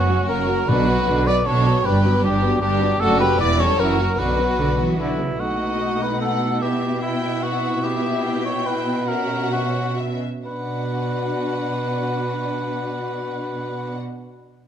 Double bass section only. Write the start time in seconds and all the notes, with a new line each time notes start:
Already playing: F#1
0.30 F#1
0.69 B1
1.08 B1
1.48 B1
1.85 G1
2.23 G1
2.62 G1
3.00 F#1
3.39 E1
3.79 F#1
4.18 B1
4.58 B1
4.98 B1